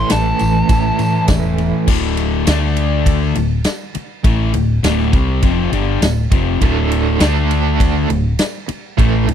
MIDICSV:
0, 0, Header, 1, 9, 480
1, 0, Start_track
1, 0, Tempo, 591716
1, 1523, Time_signature, 4, 2, 24, 8
1, 7579, End_track
2, 0, Start_track
2, 0, Title_t, "Lead electric guitar"
2, 0, Program_c, 0, 29
2, 0, Note_on_c, 0, 84, 95
2, 89, Note_off_c, 0, 84, 0
2, 95, Note_on_c, 0, 81, 93
2, 1021, Note_off_c, 0, 81, 0
2, 7579, End_track
3, 0, Start_track
3, 0, Title_t, "Overdriven electric guitar"
3, 0, Program_c, 1, 29
3, 0, Note_on_c, 1, 45, 88
3, 0, Note_on_c, 1, 52, 106
3, 0, Note_on_c, 1, 57, 108
3, 0, Note_on_c, 1, 61, 110
3, 0, Note_on_c, 1, 64, 105
3, 0, Note_on_c, 1, 69, 97
3, 551, Note_off_c, 1, 45, 0
3, 554, Note_off_c, 1, 52, 0
3, 556, Note_off_c, 1, 57, 0
3, 558, Note_off_c, 1, 61, 0
3, 562, Note_off_c, 1, 64, 0
3, 563, Note_off_c, 1, 69, 0
3, 571, Note_on_c, 1, 57, 88
3, 579, Note_on_c, 1, 61, 95
3, 581, Note_on_c, 1, 64, 96
3, 586, Note_on_c, 1, 69, 93
3, 1513, Note_off_c, 1, 57, 0
3, 1517, Note_off_c, 1, 61, 0
3, 1518, Note_off_c, 1, 64, 0
3, 1521, Note_off_c, 1, 69, 0
3, 7579, End_track
4, 0, Start_track
4, 0, Title_t, "Distorted electric guitar"
4, 0, Program_c, 2, 30
4, 79, Note_on_c, 2, 45, 71
4, 83, Note_on_c, 2, 52, 86
4, 297, Note_off_c, 2, 45, 0
4, 299, Note_off_c, 2, 52, 0
4, 322, Note_on_c, 2, 45, 79
4, 324, Note_on_c, 2, 52, 83
4, 539, Note_off_c, 2, 45, 0
4, 540, Note_off_c, 2, 52, 0
4, 565, Note_on_c, 2, 45, 67
4, 567, Note_on_c, 2, 52, 87
4, 780, Note_off_c, 2, 45, 0
4, 781, Note_off_c, 2, 52, 0
4, 799, Note_on_c, 2, 45, 69
4, 805, Note_on_c, 2, 52, 85
4, 1017, Note_off_c, 2, 45, 0
4, 1020, Note_off_c, 2, 52, 0
4, 1045, Note_on_c, 2, 45, 86
4, 1045, Note_on_c, 2, 52, 89
4, 1260, Note_off_c, 2, 45, 0
4, 1260, Note_off_c, 2, 52, 0
4, 1285, Note_on_c, 2, 45, 79
4, 1286, Note_on_c, 2, 52, 85
4, 1500, Note_off_c, 2, 45, 0
4, 1500, Note_off_c, 2, 52, 0
4, 1518, Note_on_c, 2, 38, 102
4, 1526, Note_on_c, 2, 45, 100
4, 1526, Note_on_c, 2, 50, 122
4, 1990, Note_off_c, 2, 50, 0
4, 1994, Note_off_c, 2, 38, 0
4, 1997, Note_off_c, 2, 45, 0
4, 2000, Note_on_c, 2, 50, 103
4, 2005, Note_on_c, 2, 57, 99
4, 2012, Note_on_c, 2, 62, 93
4, 2714, Note_off_c, 2, 50, 0
4, 2717, Note_off_c, 2, 57, 0
4, 2720, Note_off_c, 2, 62, 0
4, 2726, Note_on_c, 2, 38, 64
4, 2731, Note_on_c, 2, 45, 68
4, 2916, Note_off_c, 2, 38, 0
4, 2919, Note_off_c, 2, 45, 0
4, 3441, Note_on_c, 2, 45, 109
4, 3448, Note_on_c, 2, 52, 105
4, 3450, Note_on_c, 2, 57, 117
4, 3675, Note_off_c, 2, 45, 0
4, 3678, Note_off_c, 2, 52, 0
4, 3679, Note_off_c, 2, 57, 0
4, 3681, Note_on_c, 2, 38, 75
4, 3687, Note_on_c, 2, 45, 78
4, 3874, Note_off_c, 2, 38, 0
4, 3877, Note_off_c, 2, 45, 0
4, 3920, Note_on_c, 2, 38, 91
4, 3928, Note_on_c, 2, 45, 93
4, 3928, Note_on_c, 2, 50, 117
4, 4154, Note_off_c, 2, 38, 0
4, 4158, Note_off_c, 2, 45, 0
4, 4158, Note_off_c, 2, 50, 0
4, 4164, Note_on_c, 2, 48, 103
4, 4169, Note_on_c, 2, 55, 102
4, 4170, Note_on_c, 2, 60, 103
4, 4396, Note_off_c, 2, 48, 0
4, 4399, Note_off_c, 2, 55, 0
4, 4399, Note_off_c, 2, 60, 0
4, 4406, Note_on_c, 2, 41, 95
4, 4410, Note_on_c, 2, 48, 93
4, 4417, Note_on_c, 2, 53, 101
4, 4637, Note_off_c, 2, 41, 0
4, 4639, Note_off_c, 2, 48, 0
4, 4643, Note_off_c, 2, 53, 0
4, 4645, Note_on_c, 2, 43, 94
4, 4649, Note_on_c, 2, 50, 105
4, 4653, Note_on_c, 2, 55, 100
4, 4877, Note_off_c, 2, 43, 0
4, 4879, Note_off_c, 2, 50, 0
4, 4881, Note_off_c, 2, 55, 0
4, 4890, Note_on_c, 2, 38, 64
4, 4891, Note_on_c, 2, 45, 75
4, 5078, Note_off_c, 2, 38, 0
4, 5079, Note_off_c, 2, 45, 0
4, 5127, Note_on_c, 2, 41, 83
4, 5132, Note_on_c, 2, 53, 110
4, 5133, Note_on_c, 2, 48, 97
4, 5358, Note_off_c, 2, 41, 0
4, 5360, Note_off_c, 2, 53, 0
4, 5361, Note_off_c, 2, 48, 0
4, 5371, Note_on_c, 2, 38, 111
4, 5373, Note_on_c, 2, 45, 118
4, 5376, Note_on_c, 2, 50, 115
4, 5834, Note_off_c, 2, 50, 0
4, 5840, Note_off_c, 2, 38, 0
4, 5841, Note_off_c, 2, 45, 0
4, 5843, Note_on_c, 2, 57, 100
4, 5844, Note_on_c, 2, 50, 85
4, 5851, Note_on_c, 2, 62, 115
4, 6556, Note_off_c, 2, 57, 0
4, 6557, Note_off_c, 2, 50, 0
4, 6559, Note_on_c, 2, 38, 67
4, 6561, Note_off_c, 2, 62, 0
4, 6563, Note_on_c, 2, 45, 69
4, 6754, Note_off_c, 2, 38, 0
4, 6756, Note_off_c, 2, 45, 0
4, 7281, Note_on_c, 2, 45, 104
4, 7283, Note_on_c, 2, 52, 108
4, 7285, Note_on_c, 2, 57, 101
4, 7516, Note_off_c, 2, 45, 0
4, 7517, Note_off_c, 2, 52, 0
4, 7518, Note_off_c, 2, 57, 0
4, 7529, Note_on_c, 2, 38, 67
4, 7530, Note_on_c, 2, 45, 70
4, 7579, Note_off_c, 2, 38, 0
4, 7579, Note_off_c, 2, 45, 0
4, 7579, End_track
5, 0, Start_track
5, 0, Title_t, "Fretless electric bass"
5, 0, Program_c, 3, 35
5, 89, Note_on_c, 3, 33, 89
5, 255, Note_off_c, 3, 33, 0
5, 332, Note_on_c, 3, 33, 95
5, 497, Note_off_c, 3, 33, 0
5, 562, Note_on_c, 3, 33, 94
5, 731, Note_off_c, 3, 33, 0
5, 806, Note_on_c, 3, 45, 90
5, 973, Note_off_c, 3, 45, 0
5, 1041, Note_on_c, 3, 28, 91
5, 1377, Note_off_c, 3, 28, 0
5, 1522, Note_on_c, 3, 26, 88
5, 1970, Note_off_c, 3, 26, 0
5, 2006, Note_on_c, 3, 38, 110
5, 2692, Note_off_c, 3, 38, 0
5, 2725, Note_on_c, 3, 26, 76
5, 2947, Note_off_c, 3, 26, 0
5, 3442, Note_on_c, 3, 33, 90
5, 3666, Note_off_c, 3, 33, 0
5, 3689, Note_on_c, 3, 26, 80
5, 3910, Note_off_c, 3, 26, 0
5, 3924, Note_on_c, 3, 26, 100
5, 4147, Note_off_c, 3, 26, 0
5, 4163, Note_on_c, 3, 36, 99
5, 4386, Note_off_c, 3, 36, 0
5, 4404, Note_on_c, 3, 29, 101
5, 4627, Note_off_c, 3, 29, 0
5, 4639, Note_on_c, 3, 31, 92
5, 4864, Note_off_c, 3, 31, 0
5, 4880, Note_on_c, 3, 26, 90
5, 5105, Note_off_c, 3, 26, 0
5, 5124, Note_on_c, 3, 29, 99
5, 5347, Note_off_c, 3, 29, 0
5, 5362, Note_on_c, 3, 26, 98
5, 5810, Note_off_c, 3, 26, 0
5, 5842, Note_on_c, 3, 38, 95
5, 6531, Note_off_c, 3, 38, 0
5, 6569, Note_on_c, 3, 26, 72
5, 6790, Note_off_c, 3, 26, 0
5, 7290, Note_on_c, 3, 33, 90
5, 7511, Note_off_c, 3, 33, 0
5, 7525, Note_on_c, 3, 26, 78
5, 7579, Note_off_c, 3, 26, 0
5, 7579, End_track
6, 0, Start_track
6, 0, Title_t, "Muted distorted electric guitar strokes"
6, 3206, Note_on_c, 9, 29, 59
6, 3287, Note_off_c, 9, 29, 0
6, 7049, Note_on_c, 9, 29, 55
6, 7130, Note_off_c, 9, 29, 0
6, 7579, End_track
7, 0, Start_track
7, 0, Title_t, "Muted fretless electric bass strokes"
7, 3210, Note_on_c, 9, 29, 44
7, 3291, Note_off_c, 9, 29, 0
7, 7049, Note_on_c, 9, 29, 45
7, 7130, Note_off_c, 9, 29, 0
7, 7579, End_track
8, 0, Start_track
8, 0, Title_t, "Muted overdriven electric guitar strokes"
8, 3205, Note_on_c, 9, 29, 63
8, 3286, Note_off_c, 9, 29, 0
8, 7046, Note_on_c, 9, 29, 66
8, 7127, Note_off_c, 9, 29, 0
8, 7579, End_track
9, 0, Start_track
9, 0, Title_t, "Drums"
9, 78, Note_on_c, 9, 51, 98
9, 84, Note_on_c, 9, 38, 115
9, 89, Note_on_c, 9, 54, 93
9, 159, Note_off_c, 9, 51, 0
9, 165, Note_off_c, 9, 38, 0
9, 171, Note_off_c, 9, 54, 0
9, 318, Note_on_c, 9, 51, 70
9, 327, Note_on_c, 9, 54, 84
9, 399, Note_off_c, 9, 51, 0
9, 408, Note_off_c, 9, 54, 0
9, 561, Note_on_c, 9, 51, 100
9, 561, Note_on_c, 9, 54, 81
9, 562, Note_on_c, 9, 36, 116
9, 642, Note_off_c, 9, 51, 0
9, 643, Note_off_c, 9, 36, 0
9, 643, Note_off_c, 9, 54, 0
9, 801, Note_on_c, 9, 51, 69
9, 809, Note_on_c, 9, 54, 79
9, 883, Note_off_c, 9, 51, 0
9, 890, Note_off_c, 9, 54, 0
9, 1036, Note_on_c, 9, 51, 95
9, 1040, Note_on_c, 9, 36, 94
9, 1042, Note_on_c, 9, 38, 106
9, 1043, Note_on_c, 9, 54, 98
9, 1117, Note_off_c, 9, 51, 0
9, 1121, Note_off_c, 9, 36, 0
9, 1123, Note_off_c, 9, 38, 0
9, 1124, Note_off_c, 9, 54, 0
9, 1283, Note_on_c, 9, 51, 73
9, 1287, Note_on_c, 9, 54, 33
9, 1364, Note_off_c, 9, 51, 0
9, 1368, Note_off_c, 9, 54, 0
9, 1522, Note_on_c, 9, 49, 116
9, 1523, Note_on_c, 9, 36, 109
9, 1603, Note_off_c, 9, 49, 0
9, 1604, Note_off_c, 9, 36, 0
9, 1761, Note_on_c, 9, 51, 82
9, 1843, Note_off_c, 9, 51, 0
9, 2001, Note_on_c, 9, 51, 121
9, 2002, Note_on_c, 9, 54, 105
9, 2007, Note_on_c, 9, 38, 115
9, 2083, Note_off_c, 9, 51, 0
9, 2083, Note_off_c, 9, 54, 0
9, 2088, Note_off_c, 9, 38, 0
9, 2243, Note_on_c, 9, 51, 82
9, 2324, Note_off_c, 9, 51, 0
9, 2483, Note_on_c, 9, 36, 113
9, 2485, Note_on_c, 9, 51, 117
9, 2564, Note_off_c, 9, 36, 0
9, 2566, Note_off_c, 9, 51, 0
9, 2720, Note_on_c, 9, 51, 87
9, 2801, Note_off_c, 9, 51, 0
9, 2955, Note_on_c, 9, 51, 101
9, 2960, Note_on_c, 9, 38, 111
9, 2966, Note_on_c, 9, 54, 113
9, 3036, Note_off_c, 9, 51, 0
9, 3041, Note_off_c, 9, 38, 0
9, 3047, Note_off_c, 9, 54, 0
9, 3201, Note_on_c, 9, 51, 81
9, 3282, Note_off_c, 9, 51, 0
9, 3442, Note_on_c, 9, 36, 106
9, 3443, Note_on_c, 9, 51, 101
9, 3523, Note_off_c, 9, 36, 0
9, 3524, Note_off_c, 9, 51, 0
9, 3680, Note_on_c, 9, 51, 78
9, 3761, Note_off_c, 9, 51, 0
9, 3925, Note_on_c, 9, 51, 110
9, 3926, Note_on_c, 9, 54, 97
9, 3930, Note_on_c, 9, 38, 118
9, 4006, Note_off_c, 9, 51, 0
9, 4007, Note_off_c, 9, 54, 0
9, 4011, Note_off_c, 9, 38, 0
9, 4053, Note_on_c, 9, 38, 31
9, 4135, Note_off_c, 9, 38, 0
9, 4162, Note_on_c, 9, 51, 74
9, 4163, Note_on_c, 9, 36, 114
9, 4243, Note_off_c, 9, 51, 0
9, 4244, Note_off_c, 9, 36, 0
9, 4400, Note_on_c, 9, 51, 110
9, 4403, Note_on_c, 9, 36, 113
9, 4481, Note_off_c, 9, 51, 0
9, 4484, Note_off_c, 9, 36, 0
9, 4645, Note_on_c, 9, 51, 80
9, 4726, Note_off_c, 9, 51, 0
9, 4883, Note_on_c, 9, 51, 105
9, 4886, Note_on_c, 9, 54, 114
9, 4889, Note_on_c, 9, 38, 109
9, 4964, Note_off_c, 9, 51, 0
9, 4967, Note_off_c, 9, 54, 0
9, 4970, Note_off_c, 9, 38, 0
9, 5124, Note_on_c, 9, 36, 127
9, 5124, Note_on_c, 9, 51, 91
9, 5205, Note_off_c, 9, 36, 0
9, 5205, Note_off_c, 9, 51, 0
9, 5365, Note_on_c, 9, 36, 104
9, 5365, Note_on_c, 9, 51, 112
9, 5446, Note_off_c, 9, 36, 0
9, 5447, Note_off_c, 9, 51, 0
9, 5609, Note_on_c, 9, 51, 82
9, 5690, Note_off_c, 9, 51, 0
9, 5842, Note_on_c, 9, 51, 111
9, 5847, Note_on_c, 9, 38, 127
9, 5851, Note_on_c, 9, 54, 99
9, 5923, Note_off_c, 9, 51, 0
9, 5928, Note_off_c, 9, 38, 0
9, 5932, Note_off_c, 9, 54, 0
9, 6089, Note_on_c, 9, 51, 81
9, 6170, Note_off_c, 9, 51, 0
9, 6328, Note_on_c, 9, 36, 118
9, 6332, Note_on_c, 9, 51, 119
9, 6410, Note_off_c, 9, 36, 0
9, 6414, Note_off_c, 9, 51, 0
9, 6569, Note_on_c, 9, 51, 85
9, 6650, Note_off_c, 9, 51, 0
9, 6803, Note_on_c, 9, 51, 117
9, 6809, Note_on_c, 9, 38, 108
9, 6815, Note_on_c, 9, 54, 108
9, 6884, Note_off_c, 9, 51, 0
9, 6890, Note_off_c, 9, 38, 0
9, 6896, Note_off_c, 9, 54, 0
9, 7045, Note_on_c, 9, 51, 95
9, 7126, Note_off_c, 9, 51, 0
9, 7289, Note_on_c, 9, 36, 104
9, 7294, Note_on_c, 9, 51, 91
9, 7370, Note_off_c, 9, 36, 0
9, 7375, Note_off_c, 9, 51, 0
9, 7531, Note_on_c, 9, 51, 80
9, 7579, Note_off_c, 9, 51, 0
9, 7579, End_track
0, 0, End_of_file